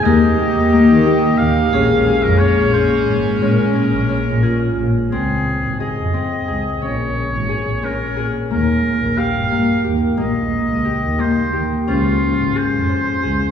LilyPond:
<<
  \new Staff \with { instrumentName = "Oboe" } { \time 5/8 \key bes \dorian \tempo 4 = 89 ees''2 f''8~ | f''8. bes'16 des''8 c''8 r8 | bes'2 r8 | aes'4 ees''4. |
des''4. bes'8. r16 | bes'4 f''4 r8 | ees''4. c''8. r16 | f'4 c''4. | }
  \new Staff \with { instrumentName = "Harp" } { \time 5/8 \key bes \dorian bes8 g'8 bes8 g'4 | des'8 aes'8 des'8 aes'4 | des'8 aes'8 des'8 aes'4 | c'4 aes'8 c'8 aes'8 |
des'4 aes'8 des'8 aes'8 | bes4 g'8 bes8 g'8 | bes4 g'8 bes8 g'8 | c''4 aes'8 c''8 aes'8 | }
  \new Staff \with { instrumentName = "Vibraphone" } { \time 5/8 \key bes \dorian g'2~ g'8 | aes'2~ aes'8~ | aes'4. f'4 | r2 r8 |
r2 r8 | r2 r8 | r2 r8 | des'2~ des'8 | }
  \new Staff \with { instrumentName = "String section" } { \time 5/8 \key bes \dorian << { <ees g'>2~ <ees g'>8 | <aes des'>2~ <aes des'>8~ | <aes des'>2~ <aes des'>8 | r2 r8 |
r2 r8 | r2 r8 | r2 r8 | r2 r8 | } \\ { bes2~ bes8~ | bes2~ bes8~ | bes2~ bes8 | r2 r8 |
r2 r8 | r2 r8 | r2 r8 | r2 r8 | } >> }
  \new Staff \with { instrumentName = "Double bass" } { \clef bass \time 5/8 \key bes \dorian ees,8 r16 ees,16 r16 ees8. ees,8 | bes,,8 r16 f,16 r16 bes,,8. aes,,8 | bes,8 r16 bes,,16 r16 bes,8. bes,,8 | des,8. aes,,16 r16 f,8 r16 des,8 |
bes,,8 r16 aes,,8 bes,,8 r16 bes,16 r16 | ees,8. bes,,16 r16 g,8 r16 ees,8 | bes,,8 r16 des,8 ees,8 r16 ees16 r16 | des,8. aes,,16 r16 f,8 r16 des,8 | }
>>